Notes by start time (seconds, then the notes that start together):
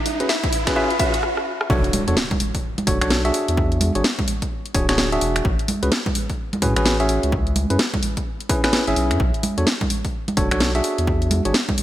Already playing: E4 G#4 B4 C#5 E5, riser
0.06 open hi-hat, high conga
0.20 C#4 F#4 G#4 B4, closed hi-hat
0.29 E5, snare
0.44 kick, closed hi-hat, high conga
0.53 open hi-hat
0.67 C#4 F#4 G#4 B4, finger snap, kick, snare, closed hi-hat
0.76 C#4 F#4 G#4 B4 E5
0.90 closed hi-hat
0.99 C#4 F#4 G#4 B4 E5, kick, open hi-hat
1.14 closed hi-hat
1.23 cross-stick
1.37 cross-stick
1.61 cross-stick
1.70 B1 D4 F#4 A4 C#5, kick, impact
1.84 closed hi-hat
1.93 open hi-hat, high conga
2.08 E2 D4 F#4 A4 C#5, closed hi-hat
2.17 snare
2.31 kick, closed hi-hat, high conga
2.40 open hi-hat
2.55 kick, open hi-hat
2.78 closed hi-hat, high conga
2.87 F#1 D4 F#4 A4 C#5, kick, open hi-hat
3.01 B1 D4 F#4 A4 C#5, finger snap, closed hi-hat
3.10 snare
3.25 D4 F#4 G#4 E5, closed hi-hat
3.34 open hi-hat
3.48 E2, closed hi-hat
3.57 kick
3.72 closed hi-hat
3.81 open hi-hat, high conga
3.95 G#1 D4 F#4 G#4 C#5, closed hi-hat
4.04 snare
4.19 kick, closed hi-hat, high conga
4.28 open hi-hat
4.42 kick, closed hi-hat
4.66 closed hi-hat
4.75 D1 D4 F#4 G#4 C#5, kick, open hi-hat
4.89 D4 F#4 G#4 C#5, finger snap, snare, closed hi-hat
4.98 snare
5.12 D4 F#4 G#4 E5, closed hi-hat
5.21 E1, open hi-hat
5.36 finger snap, closed hi-hat
5.45 A1, kick
5.59 closed hi-hat
5.68 open hi-hat, high conga
5.83 C#2 C#4 F#4 G#4 B4, closed hi-hat
5.92 snare
6.06 kick, closed hi-hat, high conga
6.15 open hi-hat
6.30 kick, open hi-hat
6.53 closed hi-hat, high conga
6.62 A2 C#4 F#4 G#4 B4, kick, open hi-hat
6.76 A1 C#4 F#4 G#4 B4, finger snap, closed hi-hat
6.85 snare
7.00 C#4 F#4 G#4 E5, closed hi-hat
7.09 open hi-hat
7.23 C#2, closed hi-hat
7.32 kick
7.47 closed hi-hat
7.56 open hi-hat, high conga
7.70 F#2 C#4 E4 G#4 B4, closed hi-hat
7.79 snare
7.94 kick, closed hi-hat, high conga
8.03 open hi-hat
8.17 kick, closed hi-hat
8.40 closed hi-hat
8.49 C#4 E4 G#4 B4, kick, open hi-hat
8.64 C#4 E4 G#4 B4, finger snap, snare, closed hi-hat
8.73 snare
8.87 G#1 C#4 E4 G#4 E5, closed hi-hat
8.96 B1, open hi-hat
9.11 F#2, finger snap, closed hi-hat
9.20 B1, kick
9.34 closed hi-hat
9.43 open hi-hat, high conga
9.58 E2 D4 F#4 A4 C#5, closed hi-hat
9.67 snare
9.81 kick, closed hi-hat, high conga
9.90 open hi-hat
10.05 kick, open hi-hat
10.28 closed hi-hat, high conga
10.37 F#1 D4 F#4 A4 C#5, kick, open hi-hat
10.51 B1 D4 F#4 A4 C#5, finger snap, closed hi-hat
10.60 snare
10.75 D4 F#4 G#4 E5, closed hi-hat
10.84 open hi-hat
10.98 E2, closed hi-hat
11.07 kick
11.22 closed hi-hat
11.31 open hi-hat, high conga
11.45 G#1 D4 F#4 G#4 C#5, closed hi-hat
11.54 snare
11.69 kick, closed hi-hat, high conga
11.78 open hi-hat